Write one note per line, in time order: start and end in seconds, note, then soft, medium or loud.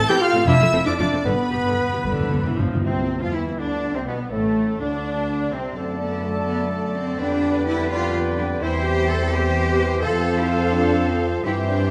0.00 0.10 A4 loud
0.09 0.15 A2 loud
0.09 0.14 E3 loud
0.09 0.14 C4 loud
0.09 0.23 G4 loud
0.09 0.22 G5 loud
0.09 0.21 G5 medium
0.09 0.15 G5 loud
0.09 0.22 G6 loud
0.21 0.46 F4 loud
0.21 0.48 F4 loud
0.21 0.48 F5 loud
0.21 0.34 F5 loud
0.21 0.49 F5 loud
0.21 0.47 F6 loud
0.35 0.41 A2 medium
0.35 0.40 C4 medium
0.35 0.40 A4 medium
0.47 0.53 F1 loud
0.47 0.53 F2 loud
0.47 0.53 F3 loud
0.47 0.53 D4 loud
0.47 0.85 E4 loud
0.47 0.86 E4 loud
0.47 0.89 E5 loud
0.47 0.86 E5 loud
0.47 0.89 E5 loud
0.47 0.86 E6 loud
0.60 0.66 F2 medium
0.60 0.66 A3 medium
0.60 0.66 F4 medium
0.73 0.78 F1 medium
0.73 0.79 F2 medium
0.73 0.79 C4 medium
0.73 0.78 A4 medium
0.86 0.92 F2 loud
0.86 0.91 F3 loud
0.86 0.99 D4 loud
0.86 0.91 D4 medium
0.86 0.98 D4 medium
0.86 0.99 D5 medium
0.86 0.97 D6 medium
0.98 1.05 F1 medium
0.98 1.05 F2 medium
0.98 1.05 A3 medium
0.98 1.25 D4 medium
0.98 1.26 D4 medium
0.98 1.05 F4 medium
0.98 1.25 D5 medium
0.98 1.28 D5 medium
0.98 1.26 D5 medium
0.98 1.06 D6 loud
1.12 1.18 F2 medium
1.12 1.18 C4 medium
1.12 1.18 A4 medium
1.25 1.31 G1 medium
1.25 1.33 G2 soft
1.25 1.32 G2 medium
1.25 1.31 D3 medium
1.25 1.31 B3 medium
1.25 2.57 B3 medium
1.25 2.57 B4 medium
1.25 2.60 B4 medium
1.25 2.57 B5 loud
1.34 1.41 G2 soft
1.42 1.49 G2 soft
1.50 1.58 G1 medium
1.50 1.56 G2 soft
1.50 1.58 G2 medium
1.50 1.57 B3 soft
1.50 1.57 G4 medium
1.57 1.64 G2 soft
1.65 1.71 G2 soft
1.65 1.72 G2 medium
1.65 1.71 D3 medium
1.65 1.71 B3 medium
1.73 1.80 G2 medium
1.82 1.88 G2 medium
1.89 1.95 G2 medium
1.89 1.98 G2 medium
1.89 1.97 B3 medium
1.89 1.97 G4 soft
1.97 2.03 G2 medium
2.04 2.11 G1 medium
2.04 2.11 G2 medium
2.04 2.12 G2 medium
2.04 2.43 D3 medium
2.12 2.19 G2 medium
2.20 2.25 G2 medium
2.20 2.27 G2 medium
2.28 2.35 G2 medium
2.33 2.38 G1 medium
2.33 2.39 G2 medium
2.33 2.42 G2 medium
2.44 2.51 G2 medium
2.44 2.52 G2 medium
2.44 2.60 E3 medium
2.52 2.59 G2 loud
2.59 2.65 G1 medium
2.59 2.66 G2 loud
2.59 2.65 G2 soft
2.59 2.85 F3 medium
2.67 2.73 G2 loud
2.73 2.78 G2 medium
2.73 2.81 G2 loud
2.85 3.20 C2 medium
2.85 3.20 C3 medium
2.85 3.23 C4 medium
2.85 3.19 C4 medium
2.85 3.20 C4 medium
2.85 3.24 C4 medium
3.21 3.34 F2 medium
3.21 3.34 F3 soft
3.21 3.34 F4 medium
3.21 3.36 F4 medium
3.21 3.34 F4 medium
3.21 3.33 F4 medium
3.21 3.36 F4 medium
3.21 3.27 F4 medium
3.21 3.35 F4 medium
3.33 3.59 E2 medium
3.33 3.59 E3 soft
3.33 3.45 E4 soft
3.33 3.42 E4 medium
3.33 3.58 E4 soft
3.33 3.58 E4 medium
3.33 3.59 E4 soft
3.33 3.42 E4 soft
3.33 3.60 E4 soft
3.33 3.59 E4 medium
3.58 3.94 D2 medium
3.58 3.94 D3 medium
3.58 3.96 D4 medium
3.58 3.94 D4 medium
3.58 3.96 D4 medium
3.58 3.94 D4 medium
3.58 3.95 D4 medium
3.58 3.97 D4 medium
3.94 4.07 C2 medium
3.94 4.01 C3 medium
3.94 4.07 C4 medium
3.94 4.06 C4 medium
3.94 4.00 C4 medium
3.94 4.07 C4 medium
3.94 4.00 C4 soft
3.94 4.08 C4 medium
4.06 4.32 B1 medium
4.06 4.19 B2 medium
4.06 4.30 B3 medium
4.06 4.31 B3 medium
4.06 4.32 B3 medium
4.06 4.18 B3 soft
4.06 4.31 B3 medium
4.06 4.16 B3 medium
4.06 4.32 B3 medium
4.06 4.34 B4 medium
4.31 4.80 A1 medium
4.31 4.80 A2 medium
4.31 4.83 A3 medium
4.31 4.80 A3 medium
4.31 4.81 A3 medium
4.31 4.82 A3 medium
4.31 4.80 A4 medium
4.31 4.81 A4 medium
4.81 5.52 D2 medium
4.81 5.55 D3 medium
4.81 5.54 D4 medium
4.81 5.52 D4 medium
4.81 5.54 D4 medium
4.81 5.55 D4 medium
4.81 5.52 D4 medium
4.81 5.53 D4 medium
5.52 5.77 C2 medium
5.52 5.76 C3 medium
5.52 5.76 C4 medium
5.52 5.76 C4 soft
5.52 5.77 C4 medium
5.52 6.01 C4 medium
5.52 5.78 C4 medium
5.52 5.77 C4 soft
5.77 7.16 F#2 medium
5.77 7.16 D3 medium
5.77 7.17 A3 medium
5.77 7.17 D4 medium
5.77 7.16 A4 medium
5.77 7.16 D5 soft
5.77 8.58 D5 medium
5.77 7.17 A5 medium
5.77 6.93 A5 medium
6.01 6.25 B3 medium
6.25 6.49 A3 medium
6.48 6.72 B3 medium
6.73 6.96 A3 medium
6.96 7.20 C4 medium
7.20 8.60 F2 medium
7.20 7.90 D3 medium
7.20 8.60 G3 medium
7.20 8.63 B3 medium
7.20 7.68 D4 medium
7.20 8.58 B4 medium
7.20 7.90 B4 medium
7.20 7.90 D5 medium
7.20 7.91 G5 medium
7.20 8.59 G5 medium
7.68 7.91 E4 medium
7.91 8.64 D3 medium
7.91 8.15 F4 medium
7.91 8.62 B4 medium
7.91 8.65 D5 medium
7.91 8.61 G5 medium
8.38 8.46 D4 medium
8.62 9.99 E2 medium
8.62 9.32 E3 medium
8.62 10.00 G3 medium
8.62 11.42 C4 medium
8.62 8.85 E4 medium
8.62 9.29 C5 medium
8.62 9.31 C5 medium
8.62 9.33 C5 medium
8.62 9.29 C5 medium
8.62 9.31 G5 medium
8.62 9.29 G5 medium
8.86 9.09 G4 loud
9.09 9.33 A4 loud
9.32 10.05 E3 medium
9.32 10.03 G4 loud
9.32 10.02 C5 medium
9.32 9.70 C5 medium
9.32 10.01 C5 medium
9.32 10.02 C5 medium
9.32 10.04 G5 medium
9.32 10.02 G5 medium
9.68 10.04 B4 medium
10.02 11.46 F2 medium
10.02 11.45 F3 medium
10.02 11.43 F3 medium
10.02 11.28 A4 medium
10.02 10.38 A4 medium
10.02 11.46 A4 medium
10.02 11.42 C5 medium
10.02 11.43 C5 medium
10.02 11.45 F5 medium
10.02 11.46 F5 medium
10.39 10.51 E4 medium
10.50 10.74 F4 medium
10.74 11.10 D4 medium
11.10 11.22 C4 medium
11.45 11.91 G2 medium
11.45 11.91 E3 medium
11.45 11.91 G3 medium
11.45 11.91 C4 medium
11.45 11.53 E4 medium
11.45 11.91 G4 medium
11.45 11.91 C5 medium
11.45 11.91 E5 medium
11.45 11.91 G5 medium
11.69 11.91 D4 medium